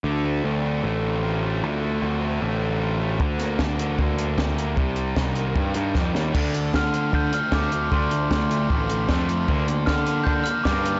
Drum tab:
CC |--------|--------|--------|--------|
HH |--------|--------|-x-x-x-x|-x-x-x--|
SD |--------|--------|-oo---o-|--o---oo|
BD |--------|--------|o-o-o-o-|o-o-o-o-|

CC |x-------|--------|--------|
HH |-x-x-x-x|-x-x-x-x|-x-x-x-x|
SD |--o---o-|--o---o-|--o---o-|
BD |o-o-o-o-|o-o-o-o-|o-o-o-o-|